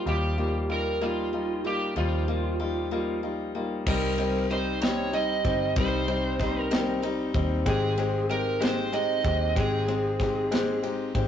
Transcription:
Already playing: steel-string acoustic guitar A#3 D#4
0.06 fingered electric bass D#2, steel-string acoustic guitar F3 G4, grand piano G3 D#4 F4, electric slide guitar G4
0.37 grand piano G3 D#4 F4, steel-string acoustic guitar A#3
0.69 grand piano G3 D#4 F4, steel-string acoustic guitar G4, electric slide guitar A#4
1.01 grand piano G3 D#4 F4, steel-string acoustic guitar A#3, electric slide guitar F4
1.33 grand piano G3 D#4 F4, steel-string acoustic guitar D#4
1.64 grand piano G3 D#4 F4, steel-string acoustic guitar A#3, electric slide guitar G4
1.96 fingered electric bass D#2, steel-string acoustic guitar F3 G4, grand piano G3 D#4 F4, electric slide guitar F4
2.28 grand piano G3 D#4 F4, steel-string acoustic guitar A#3
2.60 grand piano G3 D#4 F4, steel-string acoustic guitar G4
2.91 grand piano G3 D#4 F4, steel-string acoustic guitar A#3
3.23 grand piano G3 D#4 F4, steel-string acoustic guitar D#4
3.55 grand piano G3 D#4 F4, steel-string acoustic guitar A#3
3.86 fingered electric bass C2, grand piano G3 C4 D#4, steel-string acoustic guitar G3, electric slide guitar A#4, kick, crash
4.18 grand piano G3 C4 D#4, steel-string acoustic guitar C4, ride
4.50 grand piano G3 C4 D#4, steel-string acoustic guitar D#4, electric slide guitar C5, ride
4.82 grand piano G3 C4 D#4, electric slide guitar C#5, snare, ride
5.12 grand piano G3 C4 D#4, steel-string acoustic guitar D#4, electric slide guitar D#5, ride
5.44 fingered electric bass G1, grand piano G3 C4 D#4, steel-string acoustic guitar C4, kick, ride
5.76 fingered electric bass C2, steel-string acoustic guitar G3, grand piano G3 C4 D#4, electric slide guitar C5, kick, ride
6.08 grand piano G3 C4 D#4, steel-string acoustic guitar C4, ride
6.39 grand piano G3 C4 D#4, steel-string acoustic guitar D#4, kick, snare, ride
6.61 electric slide guitar A#4
6.71 grand piano G3 C4 D#4, steel-string acoustic guitar C4, snare, ride
7.02 grand piano G3 C4 D#4, steel-string acoustic guitar D#4, ride
7.34 fingered electric bass D#2, grand piano G3 C4 D#4, steel-string acoustic guitar C4, kick, ride
7.66 fingered electric bass G#1, grand piano G#3 C4 G4, electric slide guitar G#4, kick, ride
7.97 grand piano G#3 C4 G4, steel-string acoustic guitar C4, ride
8.29 grand piano G#3 C4 G4, steel-string acoustic guitar D#4, electric slide guitar A#4, ride
8.60 grand piano G#3 C4 G4, steel-string acoustic guitar C4, electric slide guitar C5, snare, ride
8.92 grand piano G#3 C4 G4, steel-string acoustic guitar D#4, electric slide guitar D#5, ride
9.23 fingered electric bass D#2, grand piano G#3 C4 G4, steel-string acoustic guitar C4, kick, ride
9.55 fingered electric bass G#1, grand piano G#3 C4 G4, electric slide guitar G#4, kick, ride
9.87 grand piano G#3 C4 G4, steel-string acoustic guitar C4, ride
10.19 grand piano G#3 C4 G4, steel-string acoustic guitar D#4, kick, snare, ride
10.51 grand piano G#3 C4 G4, steel-string acoustic guitar C4, snare, ride
10.83 grand piano G#3 C4 G4, steel-string acoustic guitar D#4, ride
11.14 fingered electric bass G#1, grand piano G#3 C4 G4, steel-string acoustic guitar C4, kick, ride

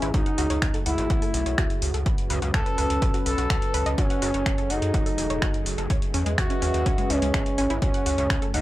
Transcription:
Already playing: synth drone F#2, analog synth pad C#4 G#4 B4 D#5 E5
0.02 analog synth bass G#1, synth arpeggio sound E4, closed hi-hat
0.14 analog synth bass C#2, analog synth pad A3 F#4, analog synth lead D#4, synth arpeggio sound F#4, kick, closed hi-hat
0.26 synth arpeggio sound F#5, closed hi-hat
0.38 analog synth bass C#2, synth arpeggio sound F#4, open hi-hat
0.50 analog synth bass C#2, synth arpeggio sound C#5, closed hi-hat
0.62 analog synth bass C#2, finger snap, kick, closed hi-hat
0.74 synth arpeggio sound A4, closed hi-hat
0.86 analog synth bass C#2, analog synth lead E4, synth arpeggio sound F#5, open hi-hat
0.98 analog synth bass G#1, closed hi-hat
1.10 analog synth bass B1, synth arpeggio sound F#5, kick, closed hi-hat
1.22 synth arpeggio sound A4, open hi-hat
1.34 analog synth bass B1, open hi-hat
1.46 analog synth bass B1, synth arpeggio sound C#5, closed hi-hat
1.58 analog synth bass C#2, synth arpeggio sound F#4, finger snap, kick, closed hi-hat
1.70 closed hi-hat
1.82 analog synth bass C#2, open hi-hat
1.94 analog synth bass C#2, synth arpeggio sound A4, closed hi-hat
2.06 analog synth bass B1, analog synth pad C#4 B4, synth arpeggio sound B5, kick, closed hi-hat
2.18 closed hi-hat
2.30 analog synth bass C#2, synth arpeggio sound B4, open hi-hat
2.42 analog synth bass C#2, synth arpeggio sound F#4, closed hi-hat
2.54 analog synth bass C#2, analog synth lead A4, finger snap, kick, closed hi-hat
2.66 synth arpeggio sound B4, closed hi-hat
2.78 analog synth bass C#2, synth arpeggio sound B4, open hi-hat
2.90 analog synth bass C#2, closed hi-hat
3.02 analog synth bass B1, synth arpeggio sound B4, kick, closed hi-hat
3.14 synth arpeggio sound F#4, closed hi-hat
3.26 analog synth bass B1, analog synth lead A4, synth arpeggio sound B4, open hi-hat
3.38 analog synth bass B1, synth arpeggio sound F#4, closed hi-hat
3.50 analog synth bass C#2, synth arpeggio sound F#4, finger snap, kick, closed hi-hat
3.62 closed hi-hat
3.74 analog synth bass C#2, synth arpeggio sound B4, open hi-hat
3.86 analog synth bass C#2, synth arpeggio sound D#5, closed hi-hat
3.98 analog synth bass F#1, analog synth pad A3 F#4 G#4, analog synth lead C#4, synth arpeggio sound F#4, kick, closed hi-hat
4.10 synth arpeggio sound F#5, closed hi-hat
4.22 analog synth bass F#1, synth arpeggio sound F#4, open hi-hat
4.34 analog synth bass F#1, synth arpeggio sound C#5, closed hi-hat
4.46 analog synth bass F#1, finger snap, kick, closed hi-hat
4.58 synth arpeggio sound A4, closed hi-hat
4.70 analog synth bass F#1, analog synth lead D#4, synth arpeggio sound F#5, open hi-hat
4.82 analog synth bass F#2, closed hi-hat
4.94 analog synth bass E1, synth arpeggio sound F#5, kick, closed hi-hat
5.06 synth arpeggio sound A4, open hi-hat
5.18 analog synth bass E1, open hi-hat
5.30 analog synth bass E1, synth arpeggio sound C#5, closed hi-hat
5.42 analog synth bass F#1, synth arpeggio sound F#4, finger snap, kick, closed hi-hat
5.54 closed hi-hat
5.66 analog synth bass F#1, open hi-hat
5.78 analog synth bass F#1, synth arpeggio sound A4, closed hi-hat
5.90 analog synth bass C#2, analog synth pad C#4 B4 D#5 E5, synth arpeggio sound C#5, kick, closed hi-hat
6.02 closed hi-hat
6.14 analog synth bass E2, synth arpeggio sound C#4, open hi-hat
6.26 analog synth bass E2, synth arpeggio sound G#3, closed hi-hat
6.38 analog synth bass D#2, analog synth lead F#4, finger snap, kick, closed hi-hat
6.50 synth arpeggio sound C#4, closed hi-hat
6.62 analog synth bass D#2, synth arpeggio sound C#4, open hi-hat
6.74 analog synth bass D#2, closed hi-hat
6.86 analog synth bass C#2, synth arpeggio sound C#4, kick, closed hi-hat
6.98 synth arpeggio sound G#3, closed hi-hat
7.10 analog synth bass C#2, analog synth lead C#4, synth arpeggio sound C#4, open hi-hat
7.22 analog synth bass C#2, synth arpeggio sound G#3, closed hi-hat
7.34 analog synth bass G#1, synth arpeggio sound G#3, finger snap, kick, closed hi-hat
7.46 closed hi-hat
7.58 analog synth bass G#1, synth arpeggio sound C#4, open hi-hat
7.70 analog synth bass G#1, synth arpeggio sound E4, closed hi-hat
7.82 analog synth bass C#2, analog synth pad A3 F#4, analog synth lead C#4, synth arpeggio sound F#4, kick, closed hi-hat
7.94 synth arpeggio sound F#5, closed hi-hat
8.06 analog synth bass C#2, synth arpeggio sound F#4, open hi-hat
8.18 analog synth bass C#2, synth arpeggio sound C#5, closed hi-hat
8.30 analog synth bass C#2, finger snap, kick, closed hi-hat
8.42 synth arpeggio sound A4, closed hi-hat
8.54 analog synth bass C#2, analog synth lead D#4, synth arpeggio sound F#5, open hi-hat

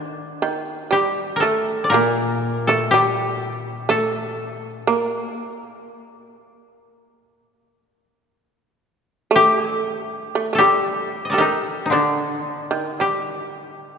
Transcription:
Already playing: shamisen D3, koto D#3 D4
0.42 shamisen D#3
0.91 shamisen G3, koto G4
1.36 koto A4 A#4
1.42 shamisen A3
1.84 koto D5
1.90 koto A#2 A#4
1.94 shamisen A#3
2.67 shamisen A3, koto A4
2.91 shamisen G3, koto G4
3.54 koto D#4
3.89 shamisen A3, koto A4
4.87 shamisen A#3
9.31 shamisen A3
9.36 koto G4
9.57 koto G#4
9.70 koto A4
9.82 shamisen G#3
9.94 shamisen G3
10.35 shamisen A3
10.53 shamisen A3, koto A4
10.58 shamisen G3, koto G4
11.25 koto D#5
11.30 koto A4 A#4 D5
11.34 shamisen G3, koto G4
11.38 shamisen D#3, koto D#4
11.86 koto D#4
11.90 koto D3 D4, shamisen D3
12.71 shamisen D#3
13.00 shamisen G3, koto G4

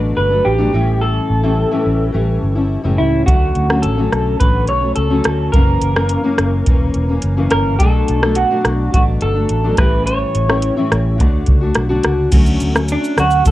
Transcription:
Already playing: fingered electric bass A1, steel-string acoustic guitar B2 F#3 A3 D4
0.17 fingered electric bass G1, clean electric guitar B4
0.30 steel-string acoustic guitar F#3 A3 D4
0.45 fingered electric bass A1, clean electric guitar G4
0.58 steel-string acoustic guitar B2 F#3 A3 D4
0.72 fingered electric bass A1, steel-string acoustic guitar A2 E3 G3 C#4 E4
1.02 clean electric guitar A4
1.30 fingered electric bass A1
1.43 steel-string acoustic guitar A2 E3 G3 C#4 E4
1.71 steel-string acoustic guitar A2 E3 G3 C#4 E4
1.86 fingered electric bass A1
2.12 fingered electric bass A1, steel-string acoustic guitar E3 G3 C#4 E4
2.43 fingered electric bass G1
2.55 steel-string acoustic guitar G3 C#4 E4
2.84 fingered electric bass F#1, steel-string acoustic guitar A2 E3 G3 C#4 E4
2.98 fingered electric bass C#2, clean electric guitar E4
3.26 fingered electric bass D2, steel-string acoustic guitar D3 F#3 A3 C#4, clean electric guitar F#4, kick, closed hi-hat
3.55 fingered electric bass D2, closed hi-hat
3.69 steel-string acoustic guitar D3 F#3 A3 C#4, cross-stick
3.82 fingered electric bass A1, clean electric guitar A4, closed hi-hat
3.97 steel-string acoustic guitar D3 F#3 A3 C#4
4.12 fingered electric bass B1, cross-stick, closed hi-hat
4.39 fingered electric bass A1, steel-string acoustic guitar D3 F#3 A3 C#4, clean electric guitar B4, kick, closed hi-hat
4.68 fingered electric bass B1, clean electric guitar C#5, closed hi-hat
4.81 steel-string acoustic guitar F#3 A3 C#4
4.96 fingered electric bass C#2, clean electric guitar A4, closed hi-hat
5.10 steel-string acoustic guitar D3 F#3 A3 C#4
5.24 fingered electric bass D2, cross-stick, closed hi-hat
5.52 fingered electric bass F#1, steel-string acoustic guitar F#2 C#3 E3 A#3 C#4, clean electric guitar A#4, kick, closed hi-hat
5.82 fingered electric bass F#1, closed hi-hat
5.96 steel-string acoustic guitar F#2 C#3 E3 A#3 C#4, cross-stick
6.09 closed hi-hat
6.24 steel-string acoustic guitar F#2 C#3 E3 A#3 C#4
6.38 fingered electric bass F#1, cross-stick, closed hi-hat
6.66 fingered electric bass E1, steel-string acoustic guitar C#3 E3 A#3 C#4, kick, closed hi-hat
6.94 fingered electric bass E1, closed hi-hat
7.09 steel-string acoustic guitar E3 A#3 C#4
7.22 fingered electric bass F#1, closed hi-hat
7.37 steel-string acoustic guitar F#2 C#3 E3 A#3 C#4
7.51 fingered electric bass G1, clean electric guitar A#4, cross-stick, closed hi-hat
7.79 fingered electric bass B1, steel-string acoustic guitar B2 F#3 A3 D4, clean electric guitar A4, kick, closed hi-hat
8.08 fingered electric bass B1, closed hi-hat
8.23 steel-string acoustic guitar B2 F#3 A3 D4, cross-stick
8.35 clean electric guitar F#4, closed hi-hat
8.51 steel-string acoustic guitar B2 F#3 A3 D4
8.65 fingered electric bass B1, cross-stick, closed hi-hat
8.92 fingered electric bass A1, steel-string acoustic guitar B2 F#3 A3 D4, clean electric guitar F#4, kick, closed hi-hat
9.21 fingered electric bass G1, clean electric guitar A4, closed hi-hat
9.35 steel-string acoustic guitar F#3 A3 D4
9.49 fingered electric bass A1, closed hi-hat
9.64 steel-string acoustic guitar B2 F#3 A3 D4
9.77 fingered electric bass A1, steel-string acoustic guitar A2 E3 G3 C#4 E4, clean electric guitar B4, kick, cross-stick, closed hi-hat
10.07 clean electric guitar C#5, closed hi-hat
10.35 fingered electric bass A1, closed hi-hat
10.49 steel-string acoustic guitar A2 E3 G3 C#4 E4, cross-stick
10.62 closed hi-hat
10.77 steel-string acoustic guitar A2 E3 G3 C#4 E4
10.92 fingered electric bass A1, cross-stick, closed hi-hat
11.18 fingered electric bass D2, steel-string acoustic guitar D3 A3 D4 F#4, kick, closed hi-hat
11.46 fingered electric bass C#2, kick, closed hi-hat
11.61 steel-string acoustic guitar A3 D4 F#4
11.75 fingered electric bass B1, cross-stick, closed hi-hat
11.89 steel-string acoustic guitar D3 A3 D4 F#4
12.04 fingered electric bass C#2, cross-stick, closed hi-hat
12.32 fingered electric bass D2, steel-string acoustic guitar D3 F#3 A3 C#4, kick, closed hi-hat, crash, shaker
12.46 shaker
12.60 fingered electric bass D2, closed hi-hat, shaker
12.74 steel-string acoustic guitar F#3 A3 C#4, cross-stick, shaker
12.89 clean electric guitar D4, closed hi-hat, shaker
13.04 shaker
13.16 fingered electric bass D2, steel-string acoustic guitar D3 F#3 A3 C#4, clean electric guitar F#4, cross-stick, closed hi-hat, shaker
13.31 shaker
13.46 fingered electric bass C#2, clean electric guitar A4, kick, closed hi-hat, shaker

